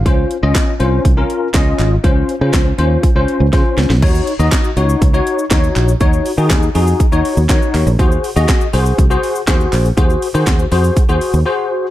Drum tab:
CC |----------------|----------------|x---------------|----------------|
HH |x-x-x-x-x-x-x-x-|x-x-x-x-x-x-x-x-|--x-x-x-x-x-x-x-|x-o-x-o-x-o-x-o-|
SH |----------------|----------------|-xxxxxxxxxxxxxxx|xxxxxxxxxxxxxxxx|
CP |----x-------x-x-|----x-----------|----x-------x-x-|----x-------x-x-|
SD |----o-------o---|----o-------o-oo|----o-------o---|----o-------o---|
BD |o---o---o---o---|o---o---o---o---|o---o---o---o---|o---o---o---o---|

CC |----------------|----------------|
HH |x-o-x-o-x-o-x-o-|x-o-x-o-x-o-----|
SH |xxxxxxxxxxxxxxxx|xxxxxxxxxxxx----|
CP |----x-------x-x-|----x-----------|
SD |----o-------o---|----o-----------|
BD |o---o---o---o---|o---o---o-------|